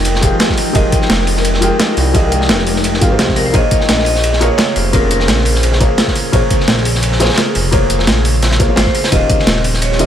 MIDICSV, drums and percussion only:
0, 0, Header, 1, 2, 480
1, 0, Start_track
1, 0, Tempo, 348837
1, 1031, Time_signature, 4, 2, 24, 8
1, 13843, End_track
2, 0, Start_track
2, 0, Title_t, "Drums"
2, 64, Note_on_c, 9, 51, 95
2, 73, Note_off_c, 9, 51, 0
2, 73, Note_on_c, 9, 42, 88
2, 73, Note_on_c, 9, 51, 77
2, 207, Note_on_c, 9, 38, 58
2, 211, Note_off_c, 9, 42, 0
2, 211, Note_off_c, 9, 51, 0
2, 304, Note_on_c, 9, 51, 69
2, 312, Note_on_c, 9, 42, 97
2, 313, Note_on_c, 9, 36, 110
2, 345, Note_off_c, 9, 38, 0
2, 441, Note_off_c, 9, 51, 0
2, 450, Note_off_c, 9, 36, 0
2, 450, Note_off_c, 9, 42, 0
2, 544, Note_on_c, 9, 51, 87
2, 550, Note_on_c, 9, 38, 123
2, 551, Note_off_c, 9, 38, 0
2, 551, Note_off_c, 9, 51, 0
2, 551, Note_on_c, 9, 38, 124
2, 551, Note_on_c, 9, 42, 86
2, 551, Note_on_c, 9, 51, 75
2, 681, Note_off_c, 9, 38, 0
2, 681, Note_on_c, 9, 36, 65
2, 681, Note_on_c, 9, 38, 56
2, 688, Note_off_c, 9, 42, 0
2, 688, Note_off_c, 9, 51, 0
2, 791, Note_on_c, 9, 46, 79
2, 791, Note_on_c, 9, 51, 74
2, 818, Note_off_c, 9, 38, 0
2, 819, Note_off_c, 9, 36, 0
2, 929, Note_off_c, 9, 46, 0
2, 929, Note_off_c, 9, 51, 0
2, 1031, Note_on_c, 9, 42, 82
2, 1031, Note_on_c, 9, 51, 75
2, 1033, Note_on_c, 9, 36, 127
2, 1034, Note_off_c, 9, 51, 0
2, 1034, Note_on_c, 9, 51, 90
2, 1169, Note_off_c, 9, 42, 0
2, 1170, Note_off_c, 9, 36, 0
2, 1171, Note_off_c, 9, 51, 0
2, 1271, Note_on_c, 9, 42, 97
2, 1273, Note_on_c, 9, 36, 117
2, 1276, Note_on_c, 9, 51, 69
2, 1398, Note_on_c, 9, 38, 52
2, 1409, Note_off_c, 9, 42, 0
2, 1410, Note_off_c, 9, 36, 0
2, 1413, Note_off_c, 9, 51, 0
2, 1507, Note_on_c, 9, 51, 102
2, 1510, Note_off_c, 9, 38, 0
2, 1510, Note_off_c, 9, 51, 0
2, 1510, Note_on_c, 9, 38, 126
2, 1510, Note_on_c, 9, 42, 82
2, 1510, Note_on_c, 9, 51, 74
2, 1519, Note_off_c, 9, 38, 0
2, 1519, Note_on_c, 9, 38, 126
2, 1647, Note_off_c, 9, 38, 0
2, 1647, Note_on_c, 9, 38, 40
2, 1648, Note_off_c, 9, 42, 0
2, 1648, Note_off_c, 9, 51, 0
2, 1746, Note_on_c, 9, 51, 73
2, 1752, Note_on_c, 9, 46, 77
2, 1785, Note_off_c, 9, 38, 0
2, 1878, Note_on_c, 9, 38, 55
2, 1883, Note_off_c, 9, 51, 0
2, 1889, Note_off_c, 9, 46, 0
2, 1991, Note_on_c, 9, 42, 84
2, 1991, Note_on_c, 9, 51, 74
2, 1992, Note_off_c, 9, 51, 0
2, 1992, Note_on_c, 9, 51, 87
2, 2016, Note_off_c, 9, 38, 0
2, 2116, Note_on_c, 9, 38, 53
2, 2129, Note_off_c, 9, 42, 0
2, 2129, Note_off_c, 9, 51, 0
2, 2225, Note_on_c, 9, 51, 68
2, 2230, Note_on_c, 9, 42, 99
2, 2254, Note_off_c, 9, 38, 0
2, 2363, Note_off_c, 9, 51, 0
2, 2368, Note_off_c, 9, 42, 0
2, 2470, Note_on_c, 9, 38, 121
2, 2470, Note_on_c, 9, 42, 84
2, 2470, Note_on_c, 9, 51, 71
2, 2471, Note_off_c, 9, 38, 0
2, 2471, Note_on_c, 9, 38, 107
2, 2472, Note_off_c, 9, 51, 0
2, 2472, Note_on_c, 9, 51, 81
2, 2608, Note_off_c, 9, 42, 0
2, 2609, Note_off_c, 9, 38, 0
2, 2609, Note_off_c, 9, 51, 0
2, 2711, Note_on_c, 9, 46, 75
2, 2718, Note_on_c, 9, 51, 70
2, 2848, Note_off_c, 9, 46, 0
2, 2855, Note_off_c, 9, 51, 0
2, 2948, Note_on_c, 9, 51, 91
2, 2951, Note_on_c, 9, 36, 123
2, 2953, Note_off_c, 9, 51, 0
2, 2953, Note_on_c, 9, 42, 78
2, 2953, Note_on_c, 9, 51, 71
2, 3089, Note_off_c, 9, 36, 0
2, 3090, Note_off_c, 9, 42, 0
2, 3090, Note_off_c, 9, 51, 0
2, 3187, Note_on_c, 9, 51, 66
2, 3191, Note_on_c, 9, 42, 93
2, 3318, Note_on_c, 9, 38, 58
2, 3325, Note_off_c, 9, 51, 0
2, 3329, Note_off_c, 9, 42, 0
2, 3428, Note_off_c, 9, 38, 0
2, 3428, Note_on_c, 9, 38, 122
2, 3429, Note_off_c, 9, 38, 0
2, 3429, Note_on_c, 9, 38, 126
2, 3429, Note_on_c, 9, 42, 80
2, 3429, Note_on_c, 9, 51, 69
2, 3433, Note_off_c, 9, 51, 0
2, 3433, Note_on_c, 9, 51, 89
2, 3559, Note_off_c, 9, 38, 0
2, 3559, Note_on_c, 9, 38, 40
2, 3566, Note_off_c, 9, 42, 0
2, 3571, Note_off_c, 9, 51, 0
2, 3668, Note_on_c, 9, 46, 78
2, 3671, Note_on_c, 9, 51, 69
2, 3697, Note_off_c, 9, 38, 0
2, 3793, Note_on_c, 9, 38, 46
2, 3806, Note_off_c, 9, 46, 0
2, 3809, Note_off_c, 9, 51, 0
2, 3909, Note_on_c, 9, 42, 81
2, 3909, Note_on_c, 9, 51, 75
2, 3920, Note_off_c, 9, 51, 0
2, 3920, Note_on_c, 9, 51, 95
2, 3931, Note_off_c, 9, 38, 0
2, 4043, Note_on_c, 9, 38, 50
2, 4047, Note_off_c, 9, 42, 0
2, 4058, Note_off_c, 9, 51, 0
2, 4149, Note_on_c, 9, 42, 89
2, 4150, Note_on_c, 9, 36, 113
2, 4152, Note_on_c, 9, 51, 71
2, 4180, Note_off_c, 9, 38, 0
2, 4286, Note_off_c, 9, 42, 0
2, 4288, Note_off_c, 9, 36, 0
2, 4290, Note_off_c, 9, 51, 0
2, 4389, Note_on_c, 9, 38, 124
2, 4389, Note_on_c, 9, 42, 77
2, 4389, Note_on_c, 9, 51, 81
2, 4401, Note_off_c, 9, 38, 0
2, 4401, Note_on_c, 9, 38, 115
2, 4518, Note_off_c, 9, 38, 0
2, 4518, Note_on_c, 9, 38, 52
2, 4519, Note_on_c, 9, 36, 65
2, 4526, Note_off_c, 9, 42, 0
2, 4527, Note_off_c, 9, 51, 0
2, 4622, Note_on_c, 9, 51, 72
2, 4628, Note_on_c, 9, 46, 77
2, 4655, Note_off_c, 9, 38, 0
2, 4657, Note_off_c, 9, 36, 0
2, 4760, Note_off_c, 9, 51, 0
2, 4766, Note_off_c, 9, 46, 0
2, 4868, Note_on_c, 9, 42, 77
2, 4868, Note_on_c, 9, 51, 72
2, 4870, Note_on_c, 9, 36, 125
2, 4877, Note_off_c, 9, 51, 0
2, 4877, Note_on_c, 9, 51, 98
2, 5005, Note_off_c, 9, 42, 0
2, 5008, Note_off_c, 9, 36, 0
2, 5015, Note_off_c, 9, 51, 0
2, 5108, Note_on_c, 9, 42, 92
2, 5110, Note_on_c, 9, 36, 107
2, 5113, Note_on_c, 9, 51, 62
2, 5236, Note_on_c, 9, 38, 52
2, 5246, Note_off_c, 9, 42, 0
2, 5248, Note_off_c, 9, 36, 0
2, 5251, Note_off_c, 9, 51, 0
2, 5349, Note_off_c, 9, 38, 0
2, 5349, Note_on_c, 9, 38, 121
2, 5349, Note_on_c, 9, 42, 78
2, 5349, Note_on_c, 9, 51, 73
2, 5353, Note_off_c, 9, 51, 0
2, 5353, Note_on_c, 9, 51, 87
2, 5486, Note_off_c, 9, 38, 0
2, 5486, Note_off_c, 9, 42, 0
2, 5489, Note_on_c, 9, 38, 45
2, 5491, Note_off_c, 9, 51, 0
2, 5569, Note_on_c, 9, 51, 66
2, 5590, Note_on_c, 9, 46, 81
2, 5626, Note_off_c, 9, 38, 0
2, 5707, Note_off_c, 9, 51, 0
2, 5714, Note_on_c, 9, 38, 52
2, 5728, Note_off_c, 9, 46, 0
2, 5830, Note_on_c, 9, 42, 76
2, 5830, Note_on_c, 9, 51, 74
2, 5831, Note_off_c, 9, 51, 0
2, 5831, Note_on_c, 9, 51, 94
2, 5852, Note_off_c, 9, 38, 0
2, 5958, Note_on_c, 9, 38, 54
2, 5967, Note_off_c, 9, 42, 0
2, 5968, Note_off_c, 9, 51, 0
2, 6069, Note_on_c, 9, 42, 91
2, 6082, Note_on_c, 9, 51, 73
2, 6096, Note_off_c, 9, 38, 0
2, 6206, Note_off_c, 9, 42, 0
2, 6220, Note_off_c, 9, 51, 0
2, 6301, Note_on_c, 9, 38, 127
2, 6303, Note_on_c, 9, 51, 86
2, 6311, Note_off_c, 9, 38, 0
2, 6311, Note_off_c, 9, 51, 0
2, 6311, Note_on_c, 9, 38, 123
2, 6311, Note_on_c, 9, 42, 77
2, 6311, Note_on_c, 9, 51, 73
2, 6448, Note_off_c, 9, 38, 0
2, 6448, Note_off_c, 9, 42, 0
2, 6448, Note_off_c, 9, 51, 0
2, 6545, Note_on_c, 9, 51, 68
2, 6549, Note_on_c, 9, 46, 83
2, 6682, Note_off_c, 9, 51, 0
2, 6687, Note_off_c, 9, 46, 0
2, 6788, Note_on_c, 9, 42, 79
2, 6788, Note_on_c, 9, 51, 75
2, 6790, Note_on_c, 9, 36, 118
2, 6797, Note_off_c, 9, 51, 0
2, 6797, Note_on_c, 9, 51, 100
2, 6925, Note_off_c, 9, 42, 0
2, 6928, Note_off_c, 9, 36, 0
2, 6935, Note_off_c, 9, 51, 0
2, 7026, Note_on_c, 9, 51, 70
2, 7029, Note_on_c, 9, 42, 90
2, 7153, Note_on_c, 9, 38, 57
2, 7163, Note_off_c, 9, 51, 0
2, 7166, Note_off_c, 9, 42, 0
2, 7264, Note_off_c, 9, 38, 0
2, 7264, Note_on_c, 9, 38, 124
2, 7269, Note_off_c, 9, 38, 0
2, 7269, Note_on_c, 9, 38, 115
2, 7269, Note_on_c, 9, 42, 79
2, 7269, Note_on_c, 9, 51, 74
2, 7277, Note_off_c, 9, 51, 0
2, 7277, Note_on_c, 9, 51, 88
2, 7399, Note_off_c, 9, 38, 0
2, 7399, Note_on_c, 9, 38, 41
2, 7406, Note_off_c, 9, 42, 0
2, 7415, Note_off_c, 9, 51, 0
2, 7500, Note_on_c, 9, 51, 65
2, 7511, Note_on_c, 9, 46, 87
2, 7536, Note_off_c, 9, 38, 0
2, 7635, Note_on_c, 9, 38, 45
2, 7638, Note_off_c, 9, 51, 0
2, 7649, Note_off_c, 9, 46, 0
2, 7748, Note_on_c, 9, 42, 80
2, 7748, Note_on_c, 9, 51, 78
2, 7753, Note_off_c, 9, 51, 0
2, 7753, Note_on_c, 9, 51, 99
2, 7773, Note_off_c, 9, 38, 0
2, 7875, Note_on_c, 9, 38, 59
2, 7886, Note_off_c, 9, 42, 0
2, 7890, Note_off_c, 9, 51, 0
2, 7988, Note_on_c, 9, 42, 89
2, 7990, Note_on_c, 9, 36, 105
2, 7996, Note_on_c, 9, 51, 74
2, 8012, Note_off_c, 9, 38, 0
2, 8126, Note_off_c, 9, 42, 0
2, 8128, Note_off_c, 9, 36, 0
2, 8133, Note_off_c, 9, 51, 0
2, 8225, Note_on_c, 9, 51, 80
2, 8227, Note_on_c, 9, 38, 126
2, 8229, Note_off_c, 9, 38, 0
2, 8229, Note_off_c, 9, 51, 0
2, 8229, Note_on_c, 9, 38, 113
2, 8229, Note_on_c, 9, 42, 76
2, 8229, Note_on_c, 9, 51, 73
2, 8359, Note_on_c, 9, 36, 63
2, 8365, Note_off_c, 9, 38, 0
2, 8365, Note_on_c, 9, 38, 57
2, 8367, Note_off_c, 9, 42, 0
2, 8367, Note_off_c, 9, 51, 0
2, 8469, Note_on_c, 9, 46, 83
2, 8471, Note_on_c, 9, 51, 67
2, 8497, Note_off_c, 9, 36, 0
2, 8503, Note_off_c, 9, 38, 0
2, 8607, Note_off_c, 9, 46, 0
2, 8609, Note_off_c, 9, 51, 0
2, 8710, Note_on_c, 9, 36, 119
2, 8712, Note_on_c, 9, 42, 76
2, 8712, Note_on_c, 9, 51, 86
2, 8848, Note_off_c, 9, 36, 0
2, 8849, Note_off_c, 9, 42, 0
2, 8850, Note_off_c, 9, 51, 0
2, 8951, Note_on_c, 9, 36, 104
2, 8951, Note_on_c, 9, 42, 93
2, 8953, Note_on_c, 9, 51, 73
2, 9085, Note_on_c, 9, 38, 48
2, 9088, Note_off_c, 9, 42, 0
2, 9089, Note_off_c, 9, 36, 0
2, 9090, Note_off_c, 9, 51, 0
2, 9189, Note_off_c, 9, 38, 0
2, 9189, Note_on_c, 9, 38, 118
2, 9189, Note_on_c, 9, 42, 78
2, 9189, Note_on_c, 9, 51, 79
2, 9193, Note_off_c, 9, 38, 0
2, 9193, Note_off_c, 9, 51, 0
2, 9193, Note_on_c, 9, 38, 120
2, 9193, Note_on_c, 9, 51, 90
2, 9319, Note_off_c, 9, 38, 0
2, 9319, Note_on_c, 9, 38, 45
2, 9327, Note_off_c, 9, 42, 0
2, 9331, Note_off_c, 9, 51, 0
2, 9429, Note_on_c, 9, 51, 77
2, 9430, Note_on_c, 9, 46, 87
2, 9456, Note_off_c, 9, 38, 0
2, 9563, Note_on_c, 9, 38, 51
2, 9567, Note_off_c, 9, 51, 0
2, 9568, Note_off_c, 9, 46, 0
2, 9669, Note_on_c, 9, 42, 82
2, 9669, Note_on_c, 9, 51, 79
2, 9680, Note_off_c, 9, 51, 0
2, 9680, Note_on_c, 9, 51, 97
2, 9701, Note_off_c, 9, 38, 0
2, 9794, Note_on_c, 9, 38, 54
2, 9806, Note_off_c, 9, 42, 0
2, 9817, Note_off_c, 9, 51, 0
2, 9900, Note_on_c, 9, 51, 65
2, 9910, Note_on_c, 9, 42, 94
2, 9917, Note_off_c, 9, 38, 0
2, 9917, Note_on_c, 9, 38, 94
2, 9973, Note_off_c, 9, 38, 0
2, 9973, Note_on_c, 9, 38, 97
2, 9977, Note_off_c, 9, 51, 0
2, 9977, Note_on_c, 9, 51, 64
2, 10038, Note_off_c, 9, 38, 0
2, 10038, Note_on_c, 9, 38, 91
2, 10043, Note_off_c, 9, 51, 0
2, 10043, Note_on_c, 9, 51, 70
2, 10048, Note_off_c, 9, 42, 0
2, 10102, Note_off_c, 9, 38, 0
2, 10102, Note_on_c, 9, 38, 87
2, 10103, Note_off_c, 9, 51, 0
2, 10103, Note_on_c, 9, 51, 76
2, 10144, Note_off_c, 9, 38, 0
2, 10144, Note_on_c, 9, 38, 127
2, 10146, Note_off_c, 9, 51, 0
2, 10146, Note_on_c, 9, 51, 95
2, 10150, Note_off_c, 9, 38, 0
2, 10150, Note_off_c, 9, 51, 0
2, 10150, Note_on_c, 9, 38, 116
2, 10150, Note_on_c, 9, 42, 80
2, 10150, Note_on_c, 9, 51, 75
2, 10287, Note_off_c, 9, 38, 0
2, 10287, Note_off_c, 9, 42, 0
2, 10287, Note_off_c, 9, 51, 0
2, 10390, Note_on_c, 9, 46, 86
2, 10392, Note_on_c, 9, 51, 73
2, 10528, Note_off_c, 9, 46, 0
2, 10529, Note_off_c, 9, 51, 0
2, 10629, Note_on_c, 9, 42, 79
2, 10629, Note_on_c, 9, 51, 81
2, 10630, Note_on_c, 9, 36, 123
2, 10632, Note_off_c, 9, 51, 0
2, 10632, Note_on_c, 9, 51, 89
2, 10767, Note_off_c, 9, 42, 0
2, 10768, Note_off_c, 9, 36, 0
2, 10770, Note_off_c, 9, 51, 0
2, 10869, Note_on_c, 9, 42, 97
2, 10872, Note_on_c, 9, 51, 71
2, 10996, Note_on_c, 9, 38, 64
2, 11006, Note_off_c, 9, 42, 0
2, 11009, Note_off_c, 9, 51, 0
2, 11109, Note_off_c, 9, 38, 0
2, 11109, Note_on_c, 9, 38, 118
2, 11109, Note_on_c, 9, 42, 80
2, 11109, Note_on_c, 9, 51, 79
2, 11111, Note_off_c, 9, 38, 0
2, 11111, Note_off_c, 9, 51, 0
2, 11111, Note_on_c, 9, 38, 122
2, 11111, Note_on_c, 9, 51, 93
2, 11231, Note_off_c, 9, 38, 0
2, 11231, Note_on_c, 9, 38, 44
2, 11246, Note_off_c, 9, 42, 0
2, 11248, Note_off_c, 9, 51, 0
2, 11347, Note_on_c, 9, 51, 72
2, 11352, Note_on_c, 9, 46, 85
2, 11369, Note_off_c, 9, 38, 0
2, 11485, Note_off_c, 9, 51, 0
2, 11489, Note_off_c, 9, 46, 0
2, 11592, Note_on_c, 9, 42, 81
2, 11592, Note_on_c, 9, 51, 81
2, 11593, Note_off_c, 9, 51, 0
2, 11593, Note_on_c, 9, 51, 78
2, 11595, Note_on_c, 9, 38, 110
2, 11715, Note_off_c, 9, 38, 0
2, 11715, Note_on_c, 9, 38, 105
2, 11726, Note_off_c, 9, 51, 0
2, 11726, Note_on_c, 9, 51, 72
2, 11730, Note_off_c, 9, 42, 0
2, 11830, Note_on_c, 9, 36, 108
2, 11831, Note_on_c, 9, 42, 93
2, 11833, Note_off_c, 9, 51, 0
2, 11833, Note_on_c, 9, 51, 71
2, 11852, Note_off_c, 9, 38, 0
2, 11968, Note_off_c, 9, 36, 0
2, 11969, Note_off_c, 9, 42, 0
2, 11970, Note_off_c, 9, 51, 0
2, 12055, Note_on_c, 9, 38, 110
2, 12068, Note_on_c, 9, 51, 74
2, 12072, Note_off_c, 9, 38, 0
2, 12072, Note_off_c, 9, 51, 0
2, 12072, Note_on_c, 9, 38, 117
2, 12072, Note_on_c, 9, 42, 80
2, 12072, Note_on_c, 9, 51, 79
2, 12194, Note_off_c, 9, 38, 0
2, 12194, Note_on_c, 9, 38, 40
2, 12199, Note_on_c, 9, 36, 60
2, 12210, Note_off_c, 9, 42, 0
2, 12210, Note_off_c, 9, 51, 0
2, 12310, Note_on_c, 9, 46, 80
2, 12313, Note_on_c, 9, 51, 64
2, 12332, Note_off_c, 9, 38, 0
2, 12337, Note_off_c, 9, 36, 0
2, 12440, Note_on_c, 9, 38, 101
2, 12446, Note_off_c, 9, 51, 0
2, 12446, Note_on_c, 9, 51, 79
2, 12448, Note_off_c, 9, 46, 0
2, 12547, Note_off_c, 9, 51, 0
2, 12547, Note_on_c, 9, 51, 96
2, 12550, Note_off_c, 9, 51, 0
2, 12550, Note_on_c, 9, 42, 85
2, 12550, Note_on_c, 9, 51, 79
2, 12551, Note_on_c, 9, 36, 120
2, 12578, Note_off_c, 9, 38, 0
2, 12687, Note_off_c, 9, 42, 0
2, 12687, Note_off_c, 9, 51, 0
2, 12688, Note_off_c, 9, 36, 0
2, 12790, Note_on_c, 9, 42, 101
2, 12791, Note_on_c, 9, 36, 111
2, 12791, Note_on_c, 9, 51, 66
2, 12925, Note_on_c, 9, 38, 49
2, 12928, Note_off_c, 9, 36, 0
2, 12928, Note_off_c, 9, 42, 0
2, 12929, Note_off_c, 9, 51, 0
2, 13029, Note_off_c, 9, 38, 0
2, 13029, Note_on_c, 9, 38, 127
2, 13031, Note_on_c, 9, 51, 84
2, 13032, Note_off_c, 9, 38, 0
2, 13032, Note_off_c, 9, 51, 0
2, 13032, Note_on_c, 9, 38, 122
2, 13032, Note_on_c, 9, 42, 86
2, 13032, Note_on_c, 9, 51, 81
2, 13155, Note_off_c, 9, 38, 0
2, 13155, Note_on_c, 9, 38, 43
2, 13169, Note_off_c, 9, 42, 0
2, 13169, Note_off_c, 9, 51, 0
2, 13270, Note_on_c, 9, 46, 80
2, 13271, Note_on_c, 9, 51, 77
2, 13293, Note_off_c, 9, 38, 0
2, 13396, Note_on_c, 9, 38, 55
2, 13407, Note_off_c, 9, 46, 0
2, 13409, Note_off_c, 9, 51, 0
2, 13507, Note_on_c, 9, 51, 95
2, 13512, Note_off_c, 9, 51, 0
2, 13512, Note_on_c, 9, 42, 85
2, 13512, Note_on_c, 9, 51, 81
2, 13533, Note_off_c, 9, 38, 0
2, 13649, Note_off_c, 9, 42, 0
2, 13649, Note_off_c, 9, 51, 0
2, 13651, Note_on_c, 9, 38, 51
2, 13749, Note_on_c, 9, 51, 66
2, 13751, Note_on_c, 9, 42, 99
2, 13788, Note_off_c, 9, 38, 0
2, 13843, Note_off_c, 9, 42, 0
2, 13843, Note_off_c, 9, 51, 0
2, 13843, End_track
0, 0, End_of_file